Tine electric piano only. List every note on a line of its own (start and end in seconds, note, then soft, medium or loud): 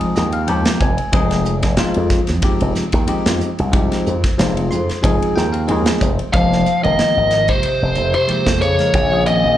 0.00 0.24 F3 medium
0.00 0.25 G#3 medium
0.00 0.25 C4 medium
0.00 0.25 D#4 medium
0.00 0.25 G#4 medium
0.16 0.32 D#5 medium
0.33 0.47 F5 medium
0.47 0.89 F3 medium
0.47 0.89 G#3 medium
0.47 0.90 C4 medium
0.47 0.90 D#4 medium
0.47 0.90 G4 medium
0.47 0.78 G5 medium
0.81 1.11 G#5 medium
1.12 1.54 F3 medium
1.12 1.54 G#3 medium
1.12 1.54 C4 medium
1.12 1.55 D#4 medium
1.12 1.55 G#4 loud
1.78 2.20 F3 medium
1.78 2.20 G#3 medium
1.78 2.20 C4 medium
1.78 2.20 D#4 medium
1.78 2.20 F4 loud
2.43 2.84 F3 medium
2.43 2.84 G#3 medium
2.43 2.85 C4 medium
2.43 2.85 D#4 medium
2.43 2.85 G4 medium
3.07 3.49 F3 medium
3.07 3.49 G#3 medium
3.07 3.49 C4 medium
3.07 3.50 D#4 medium
3.07 3.50 G4 medium
3.72 4.14 F3 medium
3.72 4.14 G#3 medium
3.72 4.15 C4 medium
3.72 4.15 D#4 medium
3.72 4.15 G4 medium
4.38 4.80 F3 medium
4.38 4.80 G#3 medium
4.38 4.80 C4 medium
4.38 4.80 D#4 medium
4.38 4.80 F4 medium
4.71 5.01 C6 medium
5.02 5.44 F3 medium
5.02 5.44 G#3 medium
5.02 5.44 C4 medium
5.02 5.45 D#4 medium
5.02 5.45 G#4 medium
5.02 5.33 G#5 medium
5.36 5.52 G5 medium
5.53 5.67 F5 medium
5.67 6.09 F3 medium
5.67 6.10 G#3 medium
5.67 6.10 C4 medium
5.67 6.10 D#4 medium
5.67 6.10 G#4 medium
5.67 5.99 D#5 medium
6.00 6.31 C5 medium
6.32 6.64 F3 medium
6.32 6.64 G#3 medium
6.32 6.64 A#3 medium
6.32 6.64 D#4 medium
6.32 6.65 G4 medium
6.82 7.63 F3 medium
6.82 7.63 G#3 medium
6.82 7.63 A#3 medium
6.82 7.64 D#4 medium
6.82 7.64 A#4 medium
8.27 8.59 F3 medium
8.27 8.59 G#3 medium
8.27 8.59 A#3 medium
8.27 8.60 D#4 medium
8.27 8.60 G4 medium
8.78 8.94 F3 medium
8.78 8.94 G#3 medium
8.78 8.94 A#3 medium
8.78 8.94 D#4 medium
8.78 8.95 A#4 medium
9.11 9.21 F3 medium
9.11 9.21 A#3 medium
9.11 9.21 C4 medium
9.11 9.22 C#4 medium
9.11 9.22 G#4 medium
9.26 9.58 F3 medium
9.26 9.58 A#3 medium
9.26 9.58 C4 medium
9.26 9.58 C#4 medium
9.26 9.58 G#4 medium